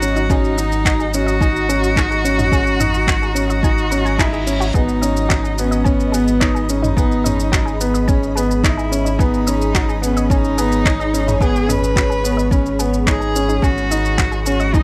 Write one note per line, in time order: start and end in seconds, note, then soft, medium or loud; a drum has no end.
0.00 4.72 G#1 medium
0.00 0.27 C#4 medium
0.00 0.32 F#4 loud
0.00 4.71 F#4 medium
0.00 9.15 D#5 medium
0.00 4.71 A#5 medium
0.00 shaker medium
0.16 0.22 D#4 medium
0.16 shaker soft
0.30 0.54 C#4 loud
0.30 1.16 D#4 loud
0.30 0.39 G#4 loud
0.30 kick loud
0.30 shaker soft
0.44 shaker soft
0.58 1.07 D#4 medium
0.58 0.61 D#5 medium
0.58 shaker medium
0.72 shaker soft
0.85 0.91 F#4 loud
0.85 kick medium
0.85 clap medium
0.85 shaker soft
0.99 1.05 G#4 medium
0.99 shaker soft
1.14 1.38 C#4 medium
1.14 4.22 F#4 loud
1.14 shaker medium
1.26 1.32 D#5 medium
1.26 shaker soft
1.41 1.66 D#4 loud
1.41 1.45 G#5 medium
1.41 kick loud
1.41 shaker soft
1.56 shaker soft
1.69 1.93 C#4 medium
1.69 1.78 G#4 medium
1.69 shaker medium
1.84 shaker soft
1.96 2.21 D#4 medium
1.96 2.03 G#4 medium
1.96 kick loud
1.96 clap medium
1.96 shaker soft
2.11 2.16 G#4 medium
2.11 shaker soft
2.24 2.49 C#4 medium
2.24 shaker medium
2.38 2.44 D#4 medium
2.38 mid tom medium
2.38 shaker soft
2.52 2.76 C#4 loud
2.52 2.61 G#4 loud
2.52 kick medium
2.52 shaker soft
2.67 shaker soft
2.80 3.29 D#4 medium
2.80 2.84 D#5 medium
2.80 mid tom medium
2.80 shaker medium
2.94 shaker soft
3.07 3.14 F#4 loud
3.07 kick loud
3.07 clap medium
3.07 shaker soft
3.22 3.28 G#4 medium
3.22 shaker soft
3.35 3.59 C#4 medium
3.35 shaker medium
3.50 3.55 D#5 medium
3.50 shaker soft
3.63 3.88 D#4 medium
3.63 3.67 G#5 medium
3.63 kick loud
3.63 reverse cymbal medium
3.63 shaker soft
3.78 shaker soft
3.91 4.16 C#4 medium
3.91 4.00 A#4 medium
3.91 shaker medium
4.05 4.11 G#5 medium
4.05 shaker soft
4.19 4.43 D#4 medium
4.19 4.74 E4 loud
4.19 4.25 G#4 medium
4.19 kick loud
4.19 clap medium
4.19 shaker soft
4.33 4.36 G#4 medium
4.33 shaker soft
4.47 4.71 C#4 medium
4.47 shaker medium
4.60 4.64 F#4 medium
4.60 shaker soft
4.74 13.61 G#1 medium
4.74 4.99 B3 medium
4.74 5.61 D#4 loud
4.74 4.83 G#4 loud
4.74 13.59 G#4 medium
4.74 13.59 B5 medium
4.74 kick loud
4.74 shaker soft
4.89 shaker soft
5.02 5.51 C#4 medium
5.02 5.05 D#5 medium
5.02 shaker medium
5.17 shaker soft
5.29 5.35 F#4 loud
5.29 kick medium
5.29 clap loud
5.29 shaker soft
5.43 5.49 G#4 medium
5.43 shaker soft
5.58 5.83 B3 medium
5.58 5.88 C#4 medium
5.58 shaker medium
5.71 5.77 D#5 medium
5.71 shaker soft
5.84 6.71 B3 loud
5.84 6.10 C#4 loud
5.84 5.88 G#5 medium
5.84 kick loud
5.84 shaker soft
6.00 shaker soft
6.12 6.38 B3 medium
6.12 6.21 G#4 medium
6.12 shaker medium
6.28 shaker soft
6.40 6.66 D#4 medium
6.40 6.49 C#5 medium
6.40 kick loud
6.40 clap medium
6.40 shaker soft
6.55 6.61 G#4 medium
6.55 shaker soft
6.69 6.94 C#4 medium
6.69 8.36 D#4 loud
6.69 shaker medium
6.82 6.88 D#4 medium
6.82 mid tom medium
6.82 shaker soft
6.97 7.21 B3 loud
6.97 7.05 G#4 loud
6.97 kick loud
6.97 shaker soft
7.12 shaker soft
7.24 7.74 C#4 medium
7.24 7.28 D#5 medium
7.24 mid tom medium
7.24 shaker medium
7.40 shaker soft
7.52 7.58 F#4 loud
7.52 kick loud
7.52 clap loud
7.52 shaker soft
7.65 7.71 G#4 medium
7.65 shaker soft
7.81 8.05 B3 medium
7.81 shaker medium
7.94 8.00 D#5 medium
7.94 shaker soft
8.08 8.33 C#4 medium
8.08 8.11 G#5 medium
8.08 kick loud
8.08 shaker soft
8.23 shaker soft
8.35 8.60 B3 medium
8.35 8.44 G#4 medium
8.35 shaker medium
8.51 shaker soft
8.64 8.88 D#4 medium
8.64 9.21 E4 medium
8.64 8.72 C#5 medium
8.64 kick loud
8.64 clap loud
8.64 shaker soft
8.77 8.83 G#4 medium
8.77 shaker soft
8.92 9.16 C#4 medium
8.92 shaker medium
9.05 9.11 D#4 medium
9.05 shaker soft
9.19 9.43 B3 medium
9.19 10.05 D#4 medium
9.19 9.27 G#4 loud
9.19 13.60 C#5 medium
9.19 kick loud
9.19 shaker soft
9.34 shaker soft
9.47 9.96 C#4 medium
9.47 9.50 D#5 medium
9.47 shaker medium
9.62 shaker soft
9.75 9.80 F#4 loud
9.75 kick loud
9.75 clap loud
9.75 shaker soft
9.89 9.94 G#4 medium
9.89 shaker soft
10.02 10.26 B3 medium
10.02 10.32 C#4 medium
10.02 shaker medium
10.17 10.22 D#5 medium
10.17 shaker soft
10.30 10.54 C#4 loud
10.30 11.41 D#4 loud
10.30 10.34 G#5 medium
10.30 kick loud
10.30 shaker soft
10.44 shaker soft
10.58 10.82 B3 medium
10.58 10.66 G#4 medium
10.58 shaker medium
10.72 shaker soft
10.85 11.10 D#4 medium
10.85 10.94 C#5 medium
10.85 kick loud
10.85 clap medium
10.85 shaker soft
11.00 11.05 G#4 medium
11.00 shaker soft
11.14 11.38 C#4 medium
11.14 shaker medium
11.28 11.33 D#4 medium
11.28 mid tom medium
11.28 shaker soft
11.41 11.66 B3 loud
11.41 11.50 G#4 loud
11.41 11.71 G#4 loud
11.41 kick loud
11.41 shaker soft
11.56 shaker soft
11.68 12.17 C#4 medium
11.68 12.80 B4 loud
11.68 11.72 D#5 medium
11.68 mid tom medium
11.68 shaker medium
11.84 shaker soft
11.96 12.02 F#4 loud
11.96 kick loud
11.96 clap loud
11.96 shaker soft
12.10 12.16 G#4 medium
12.10 shaker soft
12.24 12.48 B3 medium
12.24 shaker medium
12.37 12.43 D#5 medium
12.37 shaker soft
12.51 12.76 C#4 loud
12.51 12.55 G#5 medium
12.51 kick loud
12.51 shaker soft
12.66 shaker soft
12.79 13.04 B3 medium
12.79 12.88 G#4 medium
12.79 shaker medium
12.94 shaker soft
13.07 13.32 D#4 medium
13.07 13.64 G#4 loud
13.07 13.16 C#5 medium
13.07 kick loud
13.07 clap medium
13.07 shaker soft
13.20 13.27 G#4 medium
13.20 shaker soft
13.36 13.60 C#4 medium
13.36 shaker medium
13.49 13.55 D#4 medium
13.49 shaker soft
13.62 14.83 G#1 medium
13.62 13.88 C#4 medium
13.62 14.83 F#4 medium
13.62 14.45 F#4 loud
13.62 13.71 G#4 loud
13.62 14.83 D#5 medium
13.62 14.83 A#5 medium
13.62 kick loud
13.62 shaker soft
13.78 shaker soft
13.91 14.40 D#4 medium
13.91 13.95 D#5 medium
13.91 shaker medium
14.05 shaker soft
14.18 14.24 F#4 loud
14.18 kick loud
14.18 clap medium
14.18 shaker soft
14.31 14.38 G#4 medium
14.31 shaker soft
14.45 14.71 C#4 medium
14.45 14.76 F#4 loud
14.45 14.52 G#4 medium
14.45 shaker medium
14.60 14.66 D#5 medium
14.60 shaker soft
14.74 14.83 D#4 loud
14.74 14.77 G#5 medium
14.74 kick loud
14.74 shaker soft